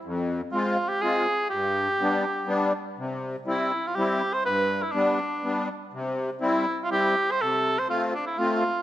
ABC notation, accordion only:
X:1
M:3/4
L:1/8
Q:"Swing" 1/4=122
K:C
V:1 name="Accordion"
F,,2 [_A,CF] z [A,CF] z | G,,2 [G,B,D] z [G,B,D] z | C,2 [G,CE] z [G,CE] z | G,,2 [G,B,D] z [G,B,D] z |
C,2 [G,CE] z [G,CE] z | C,2 [A,CF] z [A,CF] z |]